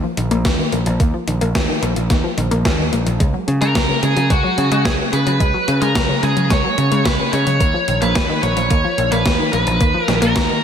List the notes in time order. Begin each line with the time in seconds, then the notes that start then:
0.04 F3
0.17 A#1 D#3, closed hi-hat
0.31 A#1 A#3, closed hi-hat
0.45 F3, kick, snare, closed hi-hat
0.59 D#3
0.72 A#1 A#3, closed hi-hat
0.86 A#1 F3, closed hi-hat
1.00 D#2 A#3, kick, closed hi-hat
1.14 F3
1.27 A#1 D#3, closed hi-hat
1.41 A#1 A#3, closed hi-hat
1.55 D#2 F3, kick, snare, closed hi-hat
1.69 D#3
1.82 A#1 A#3, closed hi-hat
1.96 A#1 F3, closed hi-hat
2.10 D#2 A#3, kick, snare, closed hi-hat
2.24 F3
2.37 A#1 D#3, closed hi-hat
2.51 A#1 A#3, closed hi-hat
2.65 D#2 F3, kick, snare, closed hi-hat
2.79 D#3
2.93 A#1 A#3, closed hi-hat
3.06 A#1 F3, closed hi-hat
3.20 C#2 G#3, kick, closed hi-hat
3.34 F#3
3.48 C#3, closed hi-hat
3.61 C#3 G#3 A#4, closed hi-hat
3.75 C#2 F#3, kick, snare, closed hi-hat
3.89 C#3
4.03 C#3 G#3 G#4, closed hi-hat
4.16 C#3 F#3, closed hi-hat
4.30 C#2 G#3 F#4, kick, closed hi-hat
4.44 F#3
4.58 C#3, closed hi-hat
4.72 C#3 G#3, closed hi-hat
4.85 C#2 F#3 G#4, kick, snare, closed hi-hat
4.99 C#3
5.13 C#3 G#3 B4, closed hi-hat
5.27 C#3 F#3, closed hi-hat
5.40 C#2 G#3, kick, closed hi-hat
5.54 F#3
5.68 C#3, closed hi-hat
5.82 C#3 G#3 A#4, closed hi-hat
5.95 C#2 F#3, kick, snare, closed hi-hat
6.09 C#3
6.23 C#3 G#3 G#4, closed hi-hat
6.37 C#3 F#3, closed hi-hat
6.50 C#2 G#3 C#5, kick, snare, closed hi-hat
6.64 F#3
6.78 C#3, closed hi-hat
6.92 C#3 G#3, closed hi-hat
7.05 C#2 F#3 B4, kick, snare, closed hi-hat
7.19 C#3
7.33 C#3 G#3 C#5, closed hi-hat
7.47 C#3 F#3, closed hi-hat
7.60 D#2 A#3, kick, closed hi-hat
7.74 F3
7.88 A#1 D#3, closed hi-hat
8.02 A#1 A#3 B4, closed hi-hat
8.15 F3, kick, snare, closed hi-hat
8.29 D#3
8.43 A#1 A#3 C#5, closed hi-hat
8.57 A#1 F3, closed hi-hat
8.71 D#2 A#3, kick, closed hi-hat
8.84 F3
8.98 A#1 D#3, closed hi-hat
9.12 A#1 A#3 B4, closed hi-hat
9.26 D#2 F3, kick, snare, closed hi-hat
9.39 D#3
9.53 A#1 A#3 B4, closed hi-hat
9.67 A#1 F3, closed hi-hat
9.80 D#2 A#3, kick, closed hi-hat
9.94 F3
10.03 A#4
10.08 A#1 D#3, snare, closed hi-hat
10.22 A#1 A#3 A#4, closed hi-hat
10.36 D#2 F3, kick, snare, closed hi-hat
10.49 D#3